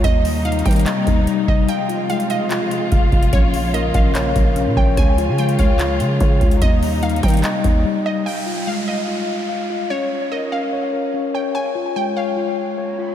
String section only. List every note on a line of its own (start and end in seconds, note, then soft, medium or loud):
0.04 1.67 C3 medium
0.04 1.67 G3 medium
0.04 1.67 A#3 medium
0.04 1.67 D#4 medium
1.69 3.31 C3 medium
1.69 6.58 F3 medium
1.69 3.31 G#3 medium
1.69 4.94 F4 medium
3.33 6.58 C#3 medium
3.33 4.96 A#3 medium
4.97 6.60 G#3 medium
4.97 6.60 F4 medium
6.62 8.24 C3 medium
6.62 8.24 G3 medium
6.62 8.24 A#3 medium
6.62 8.24 D#4 medium